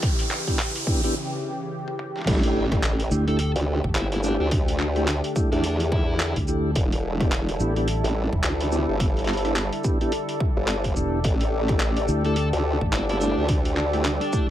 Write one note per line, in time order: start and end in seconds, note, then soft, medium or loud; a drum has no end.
0.00 2.25 C#3 medium
0.00 2.23 E3 medium
0.00 1.15 E4 medium
0.00 2.24 G4 medium
0.00 1.15 A4 medium
0.00 1.15 D5 medium
0.00 kick loud
0.00 closed hi-hat medium
0.00 riser medium
0.19 closed hi-hat medium
0.31 clap medium
0.47 0.59 B3 medium
0.47 0.59 D4 medium
0.47 0.59 E4 medium
0.47 0.59 G4 medium
0.47 kick medium
0.47 closed hi-hat soft
0.59 clap loud
0.59 closed hi-hat medium
0.75 closed hi-hat medium
0.87 1.01 B3 medium
0.87 1.01 D4 medium
0.87 1.01 E4 medium
0.87 1.01 G4 loud
0.87 kick loud
1.04 1.15 B3 loud
1.04 1.15 D4 medium
1.04 1.15 E4 medium
1.04 1.15 G4 loud
1.04 closed hi-hat soft
1.88 high tom medium
1.99 mid tom medium
2.16 snare soft
2.19 snare soft
2.21 snare soft
2.24 3.09 A1 loud
2.24 snare medium
2.27 6.72 D3 medium
2.27 2.65 A3 loud
2.27 6.72 A3 medium
2.27 2.65 D4 medium
2.27 2.65 E4 loud
2.27 2.65 G4 loud
2.27 6.72 G4 medium
2.27 kick loud
2.27 snare medium
2.27 closed hi-hat medium
2.27 crash loud
2.27 impact medium
2.31 snare medium
2.35 snare medium
2.39 snare medium
2.43 closed hi-hat medium
2.72 2.83 A3 medium
2.72 2.83 D4 medium
2.72 2.83 E4 medium
2.72 2.83 G4 medium
2.72 kick loud
2.72 cross-stick soft
2.72 closed hi-hat soft
2.83 clap loud
2.83 closed hi-hat medium
2.95 14.50 A4 loud
3.00 closed hi-hat medium
3.11 3.53 D2 loud
3.11 3.26 A3 medium
3.11 3.26 D4 medium
3.11 3.26 E4 medium
3.11 3.26 G4 loud
3.11 shaker medium
3.28 3.39 A3 medium
3.28 3.39 D4 medium
3.28 3.39 E4 medium
3.28 3.39 G4 loud
3.28 3.35 A4 medium
3.28 closed hi-hat soft
3.39 3.50 A4 medium
3.39 closed hi-hat medium
3.56 3.81 D2 loud
3.56 closed hi-hat medium
3.84 3.94 A1 loud
3.84 kick medium
3.95 4.37 G1 medium
3.95 4.06 E4 medium
3.95 clap loud
3.95 closed hi-hat medium
4.12 4.20 E4 medium
4.12 closed hi-hat medium
4.23 4.47 A3 medium
4.23 4.34 D4 medium
4.23 4.47 D4 medium
4.23 4.47 E4 medium
4.23 4.47 G4 loud
4.23 14.50 D5 medium
4.23 shaker medium
4.40 5.21 D2 loud
4.40 4.47 D4 medium
4.51 kick loud
4.51 closed hi-hat medium
4.68 closed hi-hat medium
4.79 clap medium
4.96 5.08 A3 medium
4.96 5.08 D4 medium
4.96 5.08 E4 medium
4.96 5.08 G4 loud
4.96 cross-stick soft
4.96 closed hi-hat soft
5.08 clap loud
5.08 closed hi-hat medium
5.24 closed hi-hat medium
5.36 5.50 A3 medium
5.36 5.50 D4 medium
5.36 5.50 E4 medium
5.36 5.50 G4 loud
5.36 kick loud
5.36 shaker medium
5.52 6.34 E2 medium
5.52 5.64 A3 loud
5.52 5.76 D4 medium
5.52 5.64 D4 medium
5.52 5.64 E4 medium
5.52 5.64 G4 loud
5.52 closed hi-hat soft
5.64 closed hi-hat medium
5.80 closed hi-hat medium
5.92 6.36 E4 loud
5.92 kick loud
6.20 clap loud
6.20 closed hi-hat medium
6.36 6.74 D2 medium
6.36 kick medium
6.36 closed hi-hat medium
6.48 6.71 A3 medium
6.48 6.71 D4 medium
6.48 6.71 E4 medium
6.48 6.71 G4 loud
6.48 shaker medium
6.75 7.58 E1 medium
6.75 14.50 D3 medium
6.75 11.21 G3 medium
6.75 11.21 E4 loud
6.75 kick loud
6.75 closed hi-hat medium
6.92 closed hi-hat medium
7.20 7.32 B3 medium
7.20 7.32 D4 medium
7.20 7.32 E4 medium
7.20 7.32 G4 medium
7.20 kick loud
7.20 cross-stick soft
7.20 closed hi-hat soft
7.32 clap loud
7.32 closed hi-hat medium
7.49 closed hi-hat medium
7.60 8.02 A1 loud
7.60 7.74 B3 medium
7.60 7.74 D4 medium
7.60 7.74 E4 medium
7.60 7.74 G4 loud
7.60 shaker medium
7.76 7.88 B3 loud
7.76 7.88 D4 medium
7.76 7.88 E4 medium
7.76 7.88 G4 loud
7.76 closed hi-hat soft
7.88 closed hi-hat medium
8.04 8.30 A1 loud
8.04 closed hi-hat medium
8.32 8.42 E1 loud
8.32 kick medium
8.43 8.86 D2 medium
8.43 clap loud
8.43 closed hi-hat medium
8.61 closed hi-hat medium
8.72 8.95 B3 medium
8.72 8.95 D4 medium
8.72 8.95 E4 medium
8.72 8.95 G4 loud
8.72 shaker medium
8.88 9.70 G1 loud
9.00 kick loud
9.00 closed hi-hat medium
9.17 closed hi-hat soft
9.19 closed hi-hat soft
9.24 clap medium
9.24 closed hi-hat soft
9.28 closed hi-hat soft
9.33 closed hi-hat soft
9.37 closed hi-hat soft
9.45 9.56 B3 medium
9.45 9.56 D4 medium
9.45 9.56 E4 medium
9.45 9.56 G4 medium
9.45 cross-stick soft
9.45 closed hi-hat soft
9.56 clap loud
9.56 closed hi-hat medium
9.73 closed hi-hat medium
9.84 9.99 B3 medium
9.84 9.99 D4 medium
9.84 9.99 E4 medium
9.84 9.99 G4 loud
9.84 kick loud
9.84 shaker medium
10.01 10.12 B3 medium
10.01 10.12 D4 medium
10.01 10.12 E4 medium
10.01 10.12 G4 loud
10.01 closed hi-hat soft
10.12 closed hi-hat medium
10.29 closed hi-hat medium
10.40 kick loud
10.57 10.95 G1 loud
10.68 clap loud
10.68 closed hi-hat medium
10.84 kick medium
10.84 closed hi-hat medium
10.96 11.23 E1 medium
10.96 11.20 B3 medium
10.96 11.20 D4 medium
10.96 11.20 E4 medium
10.96 11.20 G4 loud
10.96 shaker medium
11.24 12.07 A1 medium
11.24 13.47 A3 medium
11.24 14.50 G4 medium
11.24 kick loud
11.24 closed hi-hat medium
11.41 closed hi-hat medium
11.68 11.81 A3 medium
11.68 11.81 D4 medium
11.68 11.81 E4 medium
11.68 11.81 G4 medium
11.68 kick loud
11.68 cross-stick soft
11.68 closed hi-hat soft
11.80 clap loud
11.80 closed hi-hat medium
11.97 closed hi-hat medium
12.08 12.50 D2 loud
12.08 12.23 A3 medium
12.08 12.23 D4 medium
12.08 12.23 E4 medium
12.08 12.23 G4 loud
12.08 shaker medium
12.25 12.37 A3 medium
12.25 12.37 D4 medium
12.25 12.37 E4 medium
12.25 12.37 G4 loud
12.25 12.33 A4 medium
12.25 closed hi-hat soft
12.36 12.47 A4 medium
12.36 closed hi-hat medium
12.53 12.79 D2 loud
12.53 closed hi-hat soft
12.81 12.91 A1 loud
12.81 kick medium
12.92 13.35 G1 loud
12.92 13.03 E4 medium
12.92 clap loud
12.92 closed hi-hat medium
13.09 13.17 E4 medium
13.09 closed hi-hat medium
13.20 13.44 A3 medium
13.20 13.45 D4 medium
13.20 13.44 D4 medium
13.20 13.44 E4 medium
13.20 13.44 G4 loud
13.20 shaker medium
13.37 14.19 D2 loud
13.49 14.50 G3 medium
13.49 kick loud
13.49 closed hi-hat medium
13.65 closed hi-hat medium
13.77 clap medium
13.93 14.05 A3 medium
13.93 14.05 D4 medium
13.93 14.05 E4 medium
13.93 14.05 G4 medium
13.93 cross-stick soft
13.93 closed hi-hat soft
14.05 clap loud
14.05 closed hi-hat medium
14.21 14.45 D4 loud
14.21 closed hi-hat medium
14.33 14.47 A3 medium
14.33 14.47 D4 medium
14.33 14.47 E4 medium
14.33 14.47 G4 loud
14.33 kick loud
14.33 shaker medium